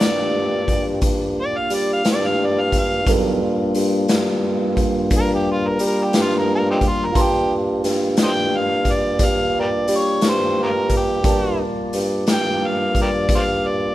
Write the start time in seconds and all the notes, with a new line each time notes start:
Already playing: A#3 D4 F4 G4 A4 A#4 D5
0.00 G2, snare, closed hi-hat
0.68 kick, closed hi-hat
1.01 G2, kick, closed hi-hat
1.41 D5
1.57 F5
1.70 G3, closed hi-hat
1.75 D5
1.93 F5
2.05 G2, snare, closed hi-hat
2.11 D5
2.27 F5
2.45 D5
2.61 F5
2.72 kick, closed hi-hat
2.78 F5
3.05 G2 F#3 G3 B3 D#4 F4 A4 A#4, kick, closed hi-hat
3.41 G3 A#3 D4 F4
3.75 G2, closed hi-hat
4.08 G2, snare, closed hi-hat
4.77 kick, closed hi-hat
5.10 G2, kick, closed hi-hat
5.17 A#4
5.35 G4
5.52 F4
5.68 A#4
5.79 G3, closed hi-hat
5.86 A#4
6.04 G4
6.13 G2, snare, closed hi-hat
6.22 F4
6.39 A#4
6.55 A#4
6.71 C4 D#4 G4
6.81 kick, closed hi-hat
6.88 F4
7.06 A#4
7.12 G2 A#3 D4 F4 G4 A5 C6, kick, closed hi-hat
7.21 G4
7.84 G2, snare, closed hi-hat
8.17 G2, snare, closed hi-hat
8.23 C5 D#5 G5
8.57 F5
8.85 kick, closed hi-hat
8.92 D5
9.19 G2, kick, closed hi-hat
9.25 F5
9.60 G4 A#4 D5
9.88 G3, closed hi-hat
9.96 C#5
10.21 G2, snare, closed hi-hat
10.29 C5
10.63 F4 G4 A#4
10.89 kick, closed hi-hat
10.97 G4
11.23 G2 G3 A#3 F4 A#4 D5 A5, kick, closed hi-hat
11.93 G2, closed hi-hat
12.27 G2, snare, closed hi-hat
12.32 G5
12.67 F5
12.95 kick, closed hi-hat
13.02 G4 A#4 D5
13.29 G2, kick, closed hi-hat
13.35 C5 D5 F5
13.67 D5